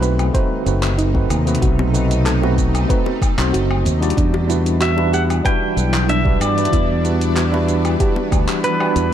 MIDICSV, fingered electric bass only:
0, 0, Header, 1, 2, 480
1, 0, Start_track
1, 0, Key_signature, 1, "minor"
1, 0, Tempo, 638298
1, 1217, Time_signature, 4, 2, 24, 8
1, 6871, End_track
2, 0, Start_track
2, 0, Title_t, "Fingered electric bass"
2, 0, Program_c, 0, 33
2, 0, Note_on_c, 0, 35, 99
2, 219, Note_off_c, 0, 35, 0
2, 498, Note_on_c, 0, 30, 85
2, 939, Note_off_c, 0, 30, 0
2, 979, Note_on_c, 0, 39, 93
2, 1170, Note_off_c, 0, 39, 0
2, 1218, Note_on_c, 0, 35, 100
2, 2139, Note_off_c, 0, 35, 0
2, 2542, Note_on_c, 0, 35, 90
2, 2633, Note_off_c, 0, 35, 0
2, 2658, Note_on_c, 0, 30, 81
2, 2897, Note_on_c, 0, 39, 102
2, 2908, Note_off_c, 0, 30, 0
2, 3089, Note_off_c, 0, 39, 0
2, 3138, Note_on_c, 0, 40, 100
2, 4059, Note_off_c, 0, 40, 0
2, 4337, Note_on_c, 0, 35, 82
2, 4779, Note_off_c, 0, 35, 0
2, 4817, Note_on_c, 0, 43, 87
2, 5009, Note_off_c, 0, 43, 0
2, 5058, Note_on_c, 0, 40, 101
2, 5979, Note_off_c, 0, 40, 0
2, 6258, Note_on_c, 0, 38, 84
2, 6356, Note_off_c, 0, 38, 0
2, 6736, Note_on_c, 0, 40, 94
2, 6835, Note_off_c, 0, 40, 0
2, 6871, End_track
0, 0, End_of_file